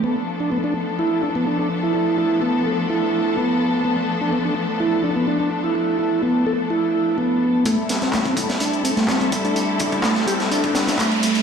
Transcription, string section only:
\new Staff \with { instrumentName = "String section" } { \time 4/4 \key a \minor \tempo 4 = 126 <f a b d' a'>1~ | <f a b d' a'>1~ | <f a b d' a'>1~ | <f a b d' a'>1 |
<g a c' e' a'>1~ | <g a c' e' a'>1 | }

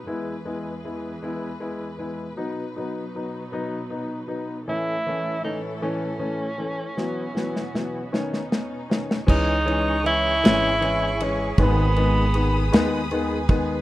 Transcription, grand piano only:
\new Staff \with { instrumentName = "Grand piano" } { \time 6/8 \key b \mixolydian \tempo 4. = 52 <gis b e'>8 <gis b e'>8 <gis b e'>8 <gis b e'>8 <gis b e'>8 <gis b e'>8 | <fis b dis'>8 <fis b dis'>8 <fis b dis'>8 <fis b dis'>8 <b dis'>8 <fis b dis'>8 | <e a cis'>8 <e a cis'>8 <e a cis'>8 <e a cis'>8 <e a cis'>8 <e a cis'>8 | <e fis b>8 <e fis b>8 <e fis b>8 <dis b cis'>8 <b cis'>8 <dis b cis'>8 |
<e gis cis'>8 <e gis cis'>8 <e gis cis'>8 <e gis cis'>8 <e gis cis'>8 <e gis cis'>8 | <dis gis b>8 <dis gis b>8 <dis gis b>8 <dis gis b>8 <dis gis b>8 <dis gis b>8 | }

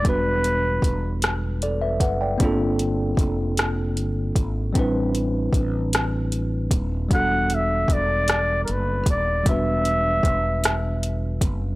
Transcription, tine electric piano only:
\new Staff \with { instrumentName = "Tine electric piano" } { \time 6/8 \key e \minor \tempo 4. = 51 << { r2 <a' d''>16 <b' e''>16 <b' fis''>16 <d'' g''>16~ | <d'' g''>16 r2 r8. | r2. | r2. |
r2. | } \\ { <g b d' fis' b'>2. | <bes c' d' f' a'>2. | <g c' d' e' b'>2. | <g b d' fis' a'>2. |
<g b d' fis' b'>2. | } >> }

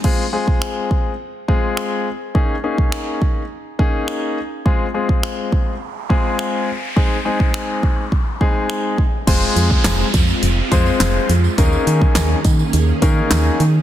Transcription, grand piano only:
\new Staff \with { instrumentName = "Grand piano" } { \time 4/4 \key f \minor \tempo 4 = 104 <aes c' f' aes'>8 <aes c' f' aes'>4. r8 <aes c' f' aes'>4 r8 | <bes des' ees' aes'>8 <bes des' ees' aes'>4. r8 <bes des' ees' aes'>4 r8 | <aes c' f' aes'>8 <aes c' f' aes'>4. r8 <aes c' f' aes'>4 r8 | <aes c' ees' aes'>8 <aes c' ees' aes'>4. r8 <aes c' ees' aes'>4 r8 |
<aes c' f' aes' c''>4. r4 <aes c' f' aes' c''>4 r8 | <bes des' ees' aes' bes'>4. r4 <bes des' ees' aes' bes'>4 r8 | }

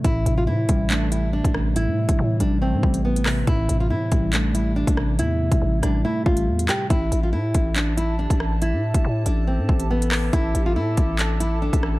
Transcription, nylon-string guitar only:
\new Staff \with { instrumentName = "Nylon-string guitar" } { \time 4/4 \key a \minor \tempo 4 = 140 e'8. f'16 e'4 d'8 e'8 d'4 | e'4. d'8 c'4 b4 | e'8. f'16 e'4 d'8 e'8 d'4 | e'4. d'8 e'8 f'4 g'8 |
e'8. f'16 e'4 d'8 e'8 d'4 | e'4. d'8 c'4 b4 | e'8. f'16 e'4 d'8 e'8 d'4 | }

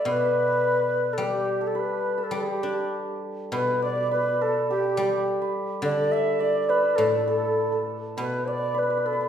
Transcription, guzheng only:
\new Staff \with { instrumentName = "Guzheng" } { \clef bass \time 2/4 \tempo 4 = 104 b,2 | g2 | g8 d'4. | b,2~ |
b,8 g4. | d2 | a,2 | b,2 | }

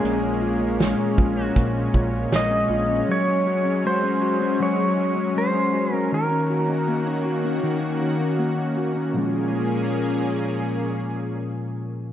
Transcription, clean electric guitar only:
\new Staff \with { instrumentName = "Clean electric guitar" } { \time 4/4 \key bes \minor \tempo 4 = 79 <bes, aes des' f'>16 des'16 f'16 des'16 aes16 des'16 f'16 des'16 bes,16 des'16 f'16 des'16 aes16 des'16 f'16 des'16 | ges16 des'16 ges'16 des'16 aes16 des'16 ges'16 des'16 ges16 des'16 ges'16 des'16 aes16 des'16 ges'16 des'16 | ees16 des'16 ges'16 des'16 bes16 des'16 ges'16 des'16 ees16 des'16 ges'16 des'16 bes16 des'16 ges'16 des'16 | <bes, f aes des' f'>1 | }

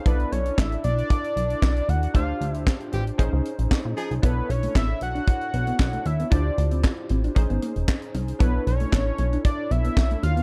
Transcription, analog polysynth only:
\new Staff \with { instrumentName = "Analog polysynth" } { \time 4/4 \key b \dorian \tempo 4 = 115 << { <bis' eis''>16 r2. r8. | r1 | r1 | r1 |
r1 | } \\ { <d' e' a' d''>1 | <d' f' g' c''>2 <cis' dis' gis' bis'>2 | <d' e' a' cis''>1 | <e' f' g' c''>2 <cis' dis' gis' bis'>2 |
<d' e' a' cis''>1 | } >> }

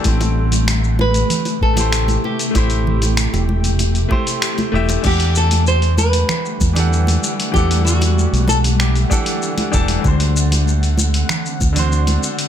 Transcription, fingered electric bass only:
\new Staff \with { instrumentName = "Fingered electric bass" } { \clef bass \time 4/4 \key e \minor \tempo 4 = 96 a,,2 r8 a,,4 r8 | a,,4~ a,,16 e,,4~ e,,16 r4 e,,16 r16 | e,2 r8 e,4 r8 | e,4~ e,16 b,,4~ b,,16 r4 e,,16 r16 |
d,2 r8 d,4 r8 | }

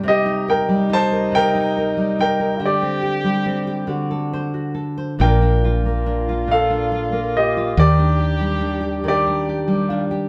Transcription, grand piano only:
\new Staff \with { instrumentName = "Grand piano" } { \time 6/8 \key d \phrygian \tempo 4. = 47 << { ees''8 g''8 a''8 g''4 g''8 | d''2~ d''8 r8 | g''4. f''4 ees''8 | d''4. d''4 r8 | } \\ { g'8 bes'8 c''8 bes'4 bes'8 | g'4. r4. | bes'4. a'4 g'8 | g'4. g'4 r8 | } >> }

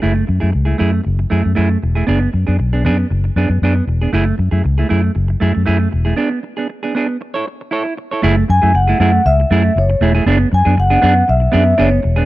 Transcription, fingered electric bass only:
\new Staff \with { instrumentName = "Fingered electric bass" } { \clef bass \time 4/4 \key fis \minor \tempo 4 = 117 fis,,8 fis,16 fis,16 cis,8 fis,8 fis,,8 fis,16 fis,16 fis,8 e,,8 | fis,,8 fis,16 fis,16 b,,8 fis,8 fis,,8 fis,16 fis,16 fis,8 e,,8 | fis,,8 fis,16 fis,16 cis,8 fis,8 fis,,8 fis,16 fis,16 fis,8 e,,8 | r1 |
fis,,8 fis,16 fis,16 fis,,8 fis,8 cis,8 fis,8 fis,,8 e,,8 | fis,,8 fis,16 fis,16 fis,,8 fis,8 b,,8 fis,8 fis,,8 e,,8 | }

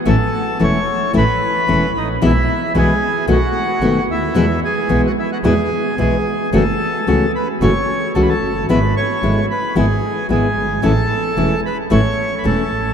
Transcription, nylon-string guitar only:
\new Staff \with { instrumentName = "Nylon-string guitar" } { \time 4/4 \key e \major \tempo 4 = 111 <e a cis' e'>8 r8 <e a cis' e'>8 r8 <e a cis' e'>8 r8 <e a cis' e'>8 r8 | <b, e gis b e'>8 r8 <b, e gis b e'>8 r8 <b, dis a b fis'>8 r8 <b, dis a b fis'>8 r8 | <b, e gis b e'>8 r8 <b, e gis b e'>8 r8 <b, e gis b e'>8 r8 <b, e gis b e'>8 r8 | <cis e a cis' fis'>8 r8 <cis e a cis' fis'>8 r8 <cis e a cis' fis'>8 r8 <cis e a cis' fis'>8 r8 |
<gis b e'>8 r8 <gis b e'>8 r8 <gis b e'>8 r8 <gis b e'>8 r8 | <e a cis' e'>8 r8 <e a cis' e'>8 r8 <e a cis' e'>8 r8 <e a cis' e'>8 r8 | }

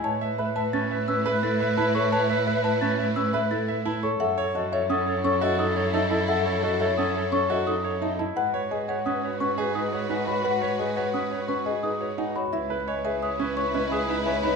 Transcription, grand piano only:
\new Staff \with { instrumentName = "Grand piano" } { \time 6/4 \key cis \minor \tempo 4 = 173 cis''8 e''8 b'8 e''8 cis'8 e''8 cis'8 b'8 e'8 e''8 e'8 a'8 | cis''8 e''8 b'8 e''8 cis'8 e''8 cis'8 b'8 e'8 e''8 e'8 a'8 | a'8 cis''8 fis'8 cis''8 cis'8 cis''8 cis'8 fis'8 dis'8 cis''8 dis'8 e'8 | a'8 cis''8 fis'8 cis''8 cis'8 cis''8 cis'8 fis'8 dis'8 cis''8 dis'8 e'8 |
b'8 cis''8 gis'8 cis''8 cis'8 cis''8 cis'8 gis'8 dis'8 cis''8 dis'8 fis'8 | b'8 cis''8 gis'8 cis''8 cis'8 cis''8 cis'8 gis'8 dis'8 cis''8 dis'8 fis'8 | e'8 b'8 cis''8 gis'8 cis''8 cis'8 cis''8 cis'8 gis'8 dis'8 cis''8 dis'8 | }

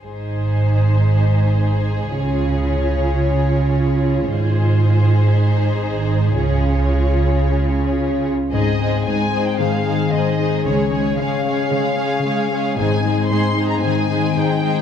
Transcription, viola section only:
\new Staff \with { instrumentName = "Viola section" } { \time 4/4 \key aes \major \tempo 4 = 113 ees'1 | f'1~ | f'2 ees'2 | f'2.~ f'8 r8 |
<aes ees'>8 <aes ees'>8 <aes ees'>8 <aes ees'>8 <aes ees'>8 <aes ees'>8 <aes ees'>8 <aes ees'>8 | <aes des'>8 <aes des'>8 <aes des'>8 <aes des'>8 <aes des'>8 <aes des'>8 <aes des'>8 <aes des'>8 | <aes ees'>8 <aes ees'>8 <aes ees'>8 <aes ees'>8 <aes ees'>8 <aes ees'>8 <aes ees'>8 <aes ees'>8 | }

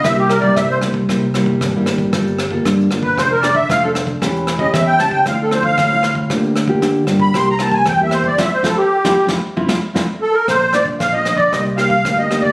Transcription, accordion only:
\new Staff \with { instrumentName = "Accordion" } { \time 4/4 \key f \major \tempo 4 = 115 e''16 g'16 bes'16 d''16 e''16 c''16 r2 r8 | r4. r16 b'16 c''16 bes'16 d''16 e''16 f''16 a'16 r8 | r8. ees''16 e''16 g''16 a''16 g''16 f''16 a'16 c''16 f''4 r16 | r4. r16 b''16 c'''16 bes''16 a''16 aes''16 g''16 e''16 c''16 d''16 |
e''16 c''16 a'16 g'4 r4. r16 a'16 bes'16 | \key bes \major c''8 d''8 f''16 ees''8 d''16 ees''8 f''8. ees''8 d''16 | }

